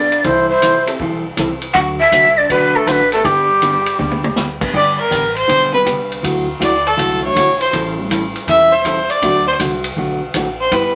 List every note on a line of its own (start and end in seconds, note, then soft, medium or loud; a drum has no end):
0.00 0.20 B1 medium
0.00 0.10 B3 medium
0.00 0.11 D4 medium
0.00 0.27 D4 medium
0.00 0.11 G4 medium
0.00 0.11 A4 medium
0.00 0.26 D5 medium
0.12 ride soft
0.24 0.85 C2 medium
0.24 0.48 C3 medium
0.24 0.48 E3 medium
0.24 0.48 G3 medium
0.24 0.48 C4 medium
0.24 0.49 E4 medium
0.24 0.48 E4 medium
0.24 0.49 A4 medium
0.24 0.49 C5 medium
0.24 kick soft
0.24 ride medium
0.49 0.85 E4 medium
0.49 0.85 C5 medium
0.62 0.75 C3 medium
0.62 0.74 E3 medium
0.62 0.75 G3 medium
0.62 0.75 C4 medium
0.62 0.75 E4 medium
0.62 0.75 A4 medium
0.62 hi-hat pedal medium
0.62 ride medium
0.87 0.99 C4 medium
0.87 0.99 E4 medium
0.87 0.99 G4 medium
0.87 0.99 A4 medium
0.87 ride medium
0.99 1.32 B1 medium
0.99 1.23 C3 medium
0.99 1.23 E3 medium
0.99 1.23 G3 medium
0.99 1.23 C4 medium
0.99 1.23 E4 medium
0.99 1.24 A4 medium
0.99 kick soft
1.37 1.69 C2 medium
1.37 1.50 C3 medium
1.37 1.50 E3 medium
1.37 1.50 G3 medium
1.37 1.60 C4 medium
1.37 1.50 C4 medium
1.37 1.60 E4 medium
1.37 1.50 E4 medium
1.37 1.60 G4 medium
1.37 1.60 A4 medium
1.37 1.50 A4 medium
1.37 hi-hat pedal medium
1.37 ride medium
1.62 ride soft
1.74 2.05 D2 medium
1.74 1.97 D3 medium
1.74 1.97 F#3 medium
1.74 1.98 A3 medium
1.74 1.98 D4 medium
1.74 1.86 F#4 medium
1.74 1.98 F#4 medium
1.74 1.80 F#5 loud
1.74 kick soft
1.74 ride medium
2.00 2.40 A4 medium
2.00 2.39 E5 loud
2.12 2.44 C2 medium
2.12 2.24 D3 medium
2.12 2.24 F#3 medium
2.12 2.25 A3 medium
2.12 2.25 D4 medium
2.12 2.25 F#4 medium
2.12 hi-hat pedal medium
2.12 ride medium
2.38 2.51 D4 medium
2.38 2.50 D5 medium
2.50 2.82 B1 medium
2.50 2.73 D3 medium
2.50 2.73 F#3 medium
2.50 2.73 A3 medium
2.50 2.73 D4 medium
2.50 2.78 D4 medium
2.50 2.73 F#4 medium
2.50 2.77 B4 medium
2.50 kick soft
2.50 ride medium
2.76 2.90 A3 medium
2.76 2.89 A4 medium
2.87 3.19 A1 medium
2.87 2.99 D3 medium
2.87 2.99 F#3 medium
2.87 3.00 A3 medium
2.87 3.13 D4 medium
2.87 3.00 D4 medium
2.87 3.00 F#4 medium
2.87 2.93 C5 medium
2.87 hi-hat pedal medium
2.87 ride medium
2.92 3.12 B4 medium
3.12 3.28 A3 medium
3.12 3.23 B3 medium
3.12 3.24 D4 medium
3.12 3.24 G4 medium
3.12 3.27 A4 medium
3.12 3.24 B4 medium
3.12 ride soft
3.24 3.84 G1 medium
3.24 3.47 D3 medium
3.24 3.47 G3 medium
3.24 4.38 G3 medium
3.24 3.47 B3 medium
3.24 3.47 D4 medium
3.24 4.37 G4 medium
3.24 3.47 G4 medium
3.24 kick soft
3.24 ride medium
3.62 3.74 D3 medium
3.62 3.74 G3 medium
3.62 3.74 B3 medium
3.62 3.75 D4 medium
3.62 3.75 G4 medium
3.62 hi-hat pedal medium
3.62 ride medium
3.86 ride medium
3.99 4.59 D2 medium
3.99 4.22 D3 medium
3.99 4.22 G3 medium
3.99 4.22 B3 medium
3.99 4.22 D4 medium
3.99 4.22 G4 medium
3.99 high tom soft
4.11 high tom medium
4.24 high tom medium
4.36 4.48 D3 medium
4.36 4.48 G3 medium
4.36 4.49 B3 medium
4.36 4.49 D4 medium
4.36 4.49 G4 medium
4.36 snare medium
4.36 hi-hat pedal medium
4.61 4.72 B3 medium
4.61 4.73 D4 medium
4.61 4.73 G4 medium
4.61 4.73 B4 medium
4.61 kick medium
4.61 crash medium
4.74 5.04 G1 medium
4.74 4.96 D3 medium
4.74 4.97 G3 medium
4.74 4.97 B3 medium
4.74 4.97 D4 medium
4.74 4.97 G4 medium
4.74 4.98 D5 medium
4.74 kick soft
5.00 5.34 A#4 medium
5.10 5.43 A1 medium
5.10 5.23 D3 medium
5.10 5.23 G3 medium
5.10 5.23 B3 medium
5.10 5.23 D4 medium
5.10 5.23 G4 medium
5.10 kick soft
5.10 hi-hat pedal medium
5.10 ride medium
5.36 5.71 C5 medium
5.36 ride soft
5.48 5.81 B1 medium
5.48 5.71 D3 medium
5.48 5.71 G3 medium
5.48 5.71 B3 medium
5.48 5.71 D4 medium
5.48 5.71 G4 medium
5.48 kick soft
5.48 ride medium
5.73 6.21 D3 medium
5.73 6.21 G3 medium
5.73 6.21 B3 medium
5.73 6.21 D4 medium
5.73 6.22 G4 medium
5.73 5.86 B4 medium
5.85 6.18 C2 medium
5.85 5.97 D3 medium
5.85 5.98 G3 medium
5.85 5.98 B3 medium
5.85 5.98 D4 medium
5.85 5.98 G4 medium
5.85 kick soft
5.85 hi-hat pedal medium
5.85 ride medium
6.12 ride soft
6.23 6.54 D2 medium
6.23 6.46 D3 medium
6.23 6.46 F#3 medium
6.23 6.46 A3 medium
6.23 6.46 E4 medium
6.23 6.46 F#4 medium
6.23 kick soft
6.23 ride medium
6.60 6.93 D2 medium
6.60 6.72 D3 medium
6.60 6.73 F#3 medium
6.60 6.73 A3 medium
6.60 6.73 E4 medium
6.60 6.73 F#4 medium
6.60 6.88 D5 medium
6.60 kick soft
6.60 hi-hat pedal medium
6.60 ride medium
6.87 7.23 A4 medium
6.87 ride soft
6.97 7.30 C2 medium
6.97 7.20 D3 medium
6.97 7.20 F#3 medium
6.97 7.20 A3 medium
6.97 7.20 E4 medium
6.97 7.21 F#4 medium
6.97 kick soft
6.97 ride medium
7.23 7.71 E3 medium
7.23 7.71 F#3 medium
7.23 7.71 A3 medium
7.23 7.71 D4 medium
7.23 7.71 E4 medium
7.23 7.58 C#5 medium
7.35 7.68 B1 medium
7.35 7.47 D3 medium
7.35 7.48 F#3 medium
7.35 7.48 A3 medium
7.35 7.48 E4 medium
7.35 7.48 F#4 medium
7.35 kick soft
7.35 hi-hat pedal soft
7.35 ride medium
7.61 7.73 C5 medium
7.61 ride soft
7.73 8.33 A1 medium
7.73 7.96 E3 medium
7.73 7.96 G3 medium
7.73 7.96 C#4 medium
7.73 7.96 E4 medium
7.73 7.96 A4 medium
7.73 kick soft
7.73 ride medium
7.98 8.45 E3 medium
7.98 8.46 G3 medium
7.98 8.46 A3 medium
7.98 8.46 C#4 medium
7.98 8.46 E4 medium
8.10 8.22 E3 medium
8.10 8.23 G3 medium
8.10 8.23 C#4 medium
8.10 8.23 E4 medium
8.10 8.23 A4 medium
8.10 kick soft
8.10 hi-hat pedal medium
8.10 ride medium
8.36 ride soft
8.47 9.07 E1 medium
8.47 8.70 E3 medium
8.47 8.71 G3 medium
8.47 8.71 C#4 medium
8.47 8.71 E4 medium
8.47 8.71 A4 medium
8.47 8.74 E5 medium
8.47 kick soft
8.47 ride medium
8.72 9.11 C5 medium
8.85 8.97 E3 medium
8.85 8.97 G3 medium
8.85 8.97 C#4 medium
8.85 8.98 E4 medium
8.85 8.98 A4 medium
8.85 kick soft
8.85 hi-hat pedal medium
8.85 ride medium
9.10 9.47 D5 medium
9.10 ride soft
9.22 9.52 D2 medium
9.22 9.45 D3 medium
9.22 9.80 D3 medium
9.22 9.80 F#3 medium
9.22 9.45 F#3 medium
9.22 9.45 A3 medium
9.22 9.80 A3 medium
9.22 9.80 D4 medium
9.22 9.45 D4 medium
9.22 9.80 F#4 medium
9.22 9.45 F#4 medium
9.22 kick soft
9.22 ride medium
9.47 9.55 C5 medium
9.60 9.91 C2 medium
9.60 9.72 D3 medium
9.60 9.72 F#3 medium
9.60 9.72 A3 medium
9.60 9.72 D4 medium
9.60 9.72 F#4 medium
9.60 kick soft
9.60 hi-hat pedal medium
9.60 ride medium
9.84 ride medium
9.97 10.29 B1 medium
9.97 10.19 D3 medium
9.97 10.20 F#3 medium
9.97 10.20 A3 medium
9.97 10.20 D4 medium
9.97 10.20 F#4 medium
9.97 kick soft
10.34 10.66 A1 medium
10.34 10.47 D3 medium
10.34 10.47 F#3 medium
10.34 10.47 A3 medium
10.34 10.47 D4 medium
10.34 10.47 F#4 medium
10.34 kick soft
10.34 hi-hat pedal medium
10.34 ride medium
10.61 10.75 C5 medium
10.72 10.95 G1 medium
10.72 10.94 G3 medium
10.72 10.94 B3 medium
10.72 10.94 E4 medium
10.72 10.95 G4 medium
10.72 10.95 B4 medium
10.72 kick soft
10.72 ride medium